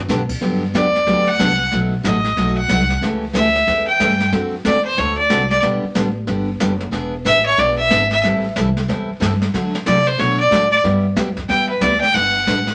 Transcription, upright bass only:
0.09 B2
0.41 G2
0.74 E2
1.07 D2
1.39 C2
1.73 B1
2.04 A1
2.37 B1
2.68 C2
3.01 C#2
3.34 D2
3.67 E2
4.00 G2
4.32 F#2
4.65 E2
4.98 D2
5.30 C2
5.62 B1
5.83 muted upright bass stroke
5.95 A1
6.29 G1
6.60 F#1
6.92 E1
7.25 A1
7.58 B1
7.91 G#1
8.24 A1
8.57 C2
8.89 E2
9.09 muted upright bass stroke
9.21 G2
9.54 D3
9.86 C3
10.19 B2
10.51 A2
10.84 G2
11.17 F#2
11.49 E2
11.81 D2
12.14 G1
12.47 A1

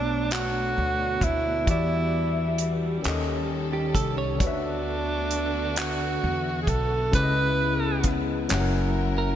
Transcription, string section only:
Already playing: A3 B3 D4
1.66 E3 G3
3.04 D#3 C#4 A4
4.40 D3 A3 B3 F#4
7.11 C#3 G#3 E4
8.49 F#3 C#4 E4 A#4

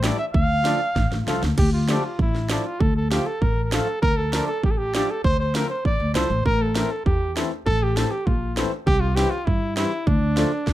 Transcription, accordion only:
0.02 E3 G3 A3
0.63 F3 A3 D4
1.26 F3 A3 F4
1.88 F3 A3 D4
2.50 F3 A3 D4
3.11 F3 A3 F4
3.72 F3 A3 F4
4.33 F3 A3 D4
4.94 F3 A3 D4
5.54 F3 A3 C4
6.14 F3 A3 E4
6.75 E3 A3 C4
7.36 E3 A3 C4
7.96 E3 A3 C4
8.56 E3 A3 C4
9.15 E3 G3 C4
9.75 E3 G3 C4
10.36 F3 A3 D4

